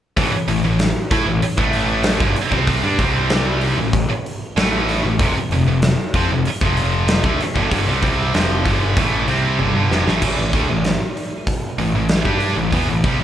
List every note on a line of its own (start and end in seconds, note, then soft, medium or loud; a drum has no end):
0.17 0.32 A1 medium
0.17 0.31 A2 medium
0.17 0.32 E3 medium
0.17 kick loud
0.17 open hi-hat medium
0.33 muted distorted electric guitar stroke medium
0.33 muted picked electric bass stroke soft
0.48 0.62 A1 medium
0.48 0.63 A2 medium
0.48 0.64 E3 medium
0.48 open hi-hat medium
0.64 0.93 A1 medium
0.64 0.89 A2 medium
0.64 0.90 E3 medium
0.79 snare loud
0.79 open hi-hat medium
1.11 1.26 A2 medium
1.11 1.26 A3 medium
1.11 1.26 E4 medium
1.11 kick loud
1.11 open hi-hat medium
1.27 1.41 A1 medium
1.27 1.42 A2 medium
1.27 1.42 E3 medium
1.42 muted picked electric bass stroke soft
1.42 muted distorted electric guitar stroke soft
1.42 open hi-hat medium
1.58 2.17 A1 medium
1.58 2.20 A2 medium
1.58 2.20 E3 medium
1.58 2.20 A3 medium
1.58 kick medium
1.73 open hi-hat medium
2.04 snare loud
2.04 open hi-hat medium
2.20 2.35 G1 medium
2.20 2.35 G2 medium
2.20 2.35 D3 loud
2.20 kick loud
2.35 muted picked electric bass stroke soft
2.35 muted distorted electric guitar stroke soft
2.35 open hi-hat medium
2.50 2.81 C2 loud
2.50 2.82 C3 medium
2.50 2.82 G3 medium
2.50 2.82 C4 medium
2.50 kick medium
2.67 kick loud
2.67 open hi-hat medium
2.83 2.98 G2 medium
2.83 2.97 G3 medium
2.83 2.98 D4 loud
2.98 3.74 C2 medium
2.98 3.76 C3 medium
2.98 3.76 G3 loud
2.98 3.77 C4 medium
2.98 kick loud
2.98 open hi-hat medium
3.30 snare loud
3.30 open hi-hat medium
3.61 open hi-hat medium
3.78 4.07 A1 medium
3.78 4.03 A2 medium
3.78 4.04 E3 medium
3.93 kick loud
3.93 open hi-hat medium
4.09 muted distorted electric guitar stroke medium
4.09 muted picked electric bass stroke soft
4.26 open hi-hat soft
4.57 5.00 A1 medium
4.57 5.02 A2 loud
4.57 5.03 E3 loud
4.57 5.03 A3 loud
4.57 snare loud
4.57 open hi-hat medium
4.89 snare soft
4.89 open hi-hat soft
5.03 5.19 A1 medium
5.03 5.19 A2 medium
5.03 5.19 E3 medium
5.19 5.34 F1 medium
5.19 5.34 F2 medium
5.19 5.35 C3 loud
5.19 kick loud
5.19 open hi-hat medium
5.35 muted picked electric bass stroke soft
5.35 muted distorted electric guitar stroke medium
5.50 5.65 F1 medium
5.50 5.66 F2 medium
5.50 5.67 C3 medium
5.50 open hi-hat medium
5.66 5.95 F1 medium
5.66 5.92 F2 medium
5.66 5.92 C3 medium
5.82 snare loud
5.82 open hi-hat medium
6.14 6.28 F2 medium
6.14 6.29 F3 medium
6.14 6.29 C4 loud
6.14 kick medium
6.14 open hi-hat medium
6.30 6.44 F1 medium
6.30 6.45 F2 medium
6.30 6.46 C3 medium
6.45 muted picked electric bass stroke soft
6.45 muted distorted electric guitar stroke medium
6.45 open hi-hat medium
6.61 7.20 F1 medium
6.61 7.23 F2 medium
6.61 7.23 C3 medium
6.61 7.23 F3 medium
6.61 kick medium
6.77 open hi-hat medium
7.08 snare loud
7.08 open hi-hat medium
7.24 7.38 D2 medium
7.24 7.39 D3 medium
7.24 7.39 A3 medium
7.24 kick medium
7.39 muted picked electric bass stroke soft
7.39 muted distorted electric guitar stroke medium
7.39 snare soft
7.39 open hi-hat medium
7.54 7.70 G1 medium
7.54 7.69 G2 medium
7.54 7.70 D3 medium
7.54 kick loud
7.71 7.85 G1 medium
7.71 7.85 G2 medium
7.71 7.85 D3 medium
7.71 kick medium
7.71 open hi-hat medium
7.86 8.01 C2 medium
7.86 8.01 C3 medium
7.86 8.01 G3 medium
8.02 8.31 C2 loud
8.02 8.32 C3 medium
8.02 8.32 G3 medium
8.02 8.33 C4 loud
8.02 kick loud
8.02 open hi-hat medium
8.34 8.63 F1 medium
8.34 8.64 F2 loud
8.34 8.64 C3 medium
8.34 8.64 F3 loud
8.34 snare medium
8.34 open hi-hat medium
8.65 8.94 G1 medium
8.65 8.95 G2 medium
8.65 8.95 D3 loud
8.65 8.95 G3 loud
8.65 kick medium
8.65 open hi-hat medium
8.96 9.25 A1 loud
8.96 9.26 A2 medium
8.96 9.27 E3 medium
8.96 9.27 A3 medium
8.96 kick loud
8.96 open hi-hat medium
9.28 9.57 C2 loud
9.28 9.58 C3 loud
9.28 9.58 G3 loud
9.28 9.58 C4 loud
9.28 open hi-hat soft
9.59 9.74 G1 medium
9.59 9.73 G2 loud
9.59 9.74 D3 loud
9.59 high tom medium
9.75 9.89 G1 medium
9.75 9.89 G2 medium
9.75 9.90 D3 medium
9.90 10.05 F1 medium
9.90 10.05 F2 medium
9.90 10.05 C3 medium
9.90 snare medium
10.06 10.20 A1 medium
10.06 10.20 A2 medium
10.06 10.21 E3 medium
10.06 snare medium
10.22 10.36 A1 medium
10.22 10.36 A2 medium
10.22 10.36 E3 medium
10.22 kick loud
10.22 crash loud
10.37 10.52 A1 medium
10.37 10.52 A2 medium
10.37 10.53 E3 medium
10.53 10.67 D2 medium
10.53 10.67 D3 medium
10.53 10.68 A3 medium
10.53 kick loud
10.53 open hi-hat medium
10.68 10.97 A1 medium
10.68 10.93 A2 medium
10.68 10.93 E3 medium
10.84 snare medium
10.84 open hi-hat medium
11.17 open hi-hat soft
11.47 kick medium
11.47 open hi-hat medium
11.78 11.93 A1 medium
11.78 11.94 A2 medium
11.78 11.94 E3 medium
11.78 open hi-hat soft
11.94 12.23 A1 medium
11.94 12.19 A2 medium
11.94 12.20 E3 medium
12.09 snare loud
12.09 open hi-hat medium
12.25 12.54 G2 medium
12.25 12.55 G3 medium
12.25 12.56 D4 medium
12.25 12.56 G4 medium
12.25 kick medium
12.40 open hi-hat medium
12.56 12.71 A1 medium
12.56 12.72 A2 medium
12.56 12.72 E3 medium
12.72 12.87 E2 medium
12.72 12.87 E3 medium
12.72 12.88 B3 medium
12.72 kick medium
12.72 open hi-hat medium
12.89 13.03 A1 medium
12.89 13.04 A2 medium
12.89 13.04 E3 medium
13.04 13.18 C2 medium
13.04 13.18 C3 medium
13.04 13.19 G3 loud
13.04 kick loud
13.04 open hi-hat medium
13.19 13.24 A1 medium
13.19 13.24 A2 medium